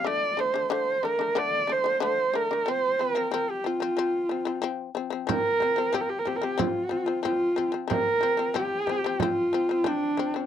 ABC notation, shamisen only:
X:1
M:4/4
L:1/16
Q:1/4=92
K:none
V:1 name="Shamisen" clef=bass
[D,A,]2 [D,A,] [D,A,] [D,A,]2 [D,A,] [D,A,] [D,A,]2 [D,A,] [D,A,] [D,A,]2 [D,A,] [D,A,] | [F,C]2 [F,C] [F,C] [F,C]2 [F,C] [F,C] [F,C]2 [F,C] [F,C] [F,C]2 [F,C] [F,C] | [F,C]2 [F,C] [F,C] [F,C]2 [F,C] [F,C] [F,C]2 [F,C] [F,C] [F,C]2 [F,C] [F,C] | [F,C]2 [F,C] [F,C] [F,C]2 [F,C] [F,C] [F,C]2 [F,C] [F,C] [F,C]2 [F,C] [F,C] |]